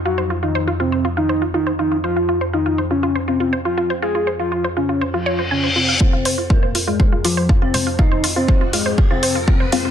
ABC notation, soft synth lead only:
X:1
M:4/4
L:1/16
Q:1/4=121
K:Fm
V:1 name="Soft synth lead"
_G2 z E2 z C2 z E2 z E z E z | F3 z E2 z D2 z C2 z F2 z | A2 z F2 z D2 z F2 z D z C z | C3 z B,2 z A,2 z F,2 z C2 z |
E2 z C2 z A,2 z C2 z C z C z |]